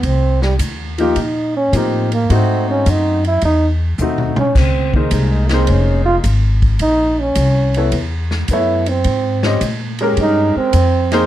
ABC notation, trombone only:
X:1
M:4/4
L:1/8
Q:"Swing" 1/4=106
K:Ab
V:1 name="Trombone"
C G, z F E D C B, | C D E _F E z2 D | C E, A, C D F z2 | E D3 z2 =E C- |
C2 z2 E C3 |]